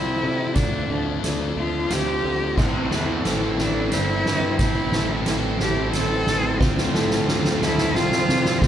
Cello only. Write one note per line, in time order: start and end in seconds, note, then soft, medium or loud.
0.00 0.56 E4 medium
0.54 1.23 D4 medium
1.59 1.94 F4 medium
1.93 2.61 G4 loud
2.60 3.26 C4 medium
3.59 3.95 D4 medium
3.94 4.59 E4 loud
4.60 5.23 E4 medium
5.60 5.91 G4 medium
5.93 6.61 A4 loud
6.60 7.27 C4 medium
7.65 7.96 E4 medium
7.95 8.63 F4 loud
8.61 8.68 C4 medium